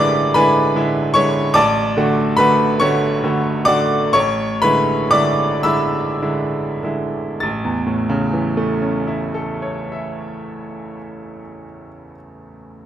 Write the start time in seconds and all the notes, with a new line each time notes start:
Already playing: A1 D3 G#3 E4 B4 C#5 D5 B5 C#6 D6
0.34 D3 G#3 E4 B4 G#5 B5
0.76 D3 G#3 E4
1.14 D3 G#3 E4 C#5 C#6
1.54 A1 D5 A5 D6
1.97 D3 A3 F#4
2.37 D3 A3 F#4 B4 B5
2.80 D3 A3 F#4 C#5 C#6
3.24 D3 A3 F#4
3.65 D3 A3 F#4 D5 D6
4.13 A1 C#5 C#6
4.62 D3 G#3 E4 B4 B5
5.11 D3 G#3 E4 D5 D6
5.63 D3 G#3 E4 E5 B5 E6
6.22 D3 G#3 E4
6.83 D3 G#3 E4
7.40 A1 A6
7.64 E2
7.86 A2
8.09 C#3
8.33 E3
8.57 A3
8.82 C#4
9.07 E4
9.34 A4
9.62 C#5
9.92 E5